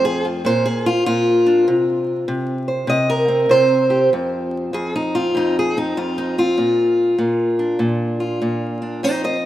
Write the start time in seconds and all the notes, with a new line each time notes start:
Already playing: F2 A3
0.05 G#4
0.25 F4
0.45 A#2 C5
0.66 G#4
0.86 F4
1.06 A#2 F4
1.46 D4
1.68 C3
2.28 C3
2.68 C5
2.87 C3 D#5
3.10 A#4
3.28 C4
3.49 C3 C5
3.90 G4
4.13 F2
4.73 F2 G#4
4.96 D#4
5.15 C4 F4
5.35 F2 D#4
5.59 G#4
5.77 C4 D#4
5.97 F2 F4
6.18 D#4
6.38 C4 F4
6.57 A#2
7.18 A#2
7.59 D4
7.79 A#2
8.20 F4
8.41 A#2
8.82 D4
9.03 F2 D#4 C5
9.24 C5 D#5